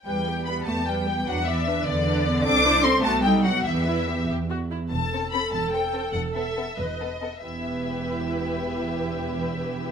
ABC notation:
X:1
M:6/8
L:1/16
Q:3/8=96
K:Em
V:1 name="Violin section"
g4 b2 a2 g4 | f2 e4 d6 | d'4 c'2 a2 g2 f2 | e6 z6 |
a4 b2 a2 g4 | f2 e4 ^d6 | e12- | e12 |]
V:2 name="Violin section"
g4 b2 a2 g4 | f2 e4 d6 | d'4 c'2 a2 g2 f2 | e6 z6 |
z2 [CA]2 [CA]2 z2 [CA]2 [CA]2 | z2 [B,A]2 [B,A]2 z2 [B,A]2 [B,A]2 | [GB]12- | [GB]12 |]
V:3 name="Viola section"
[G,B]2 [B,G]2 [G,B]2 [B,G]2 [G,B]2 [B,G]2 | [DB]2 [B,d]2 [DB]2 [B,d]2 [DB]2 [B,d]2 | [CA]2 [Ec]2 [CA]2 [B,F]2 [^DA]2 [B,F]2 | [B,G]2 [EB]2 [B,G]2 G2 F2 E2 |
A12- | A6 B3 z3 | [B,E]12- | [B,E]12 |]
V:4 name="Cello section" clef=bass
G,4 B,2 A,2 G,4 | F,2 E,4 D,6 | D4 C2 A,2 G,2 F,2 | E,6 z6 |
E,,6 E,,6 | E,,6 E,,6 | E,,12- | E,,12 |]
V:5 name="Double bass section" clef=bass
E,,6 E,,6 | E,,6 E,,6 | C,,6 B,,,6 | E,,6 E,,6 |
E,,,6 E,,,6 | E,,,6 E,,,6 | E,,,12- | E,,,12 |]